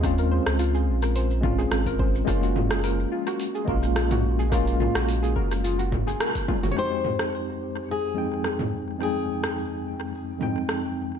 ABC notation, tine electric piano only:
X:1
M:4/4
L:1/8
Q:"Swing 16ths" 1/4=107
K:Fm
V:1 name="Tine electric piano"
[A,CDF]4- [A,CDF] [A,CDF]3 | [A,B,DF]4- [A,B,DF] [A,B,DF]3 | [A,B,DF]4- [A,B,DF] z3 | [F,,A,CEG]4- [F,,A,CEG] [F,,A,CEg]3 |
[F,,A,CEg]4- [F,,A,CEg] [F,,A,CEg]3 |]